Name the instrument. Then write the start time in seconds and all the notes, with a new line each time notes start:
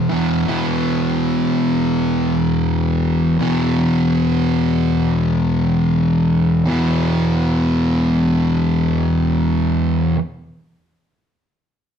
distorted electric guitar
0.10 E2 B2 E3
0.47 E2 B2 E3
3.39 E2 B2 E3
6.65 E2 B2 E3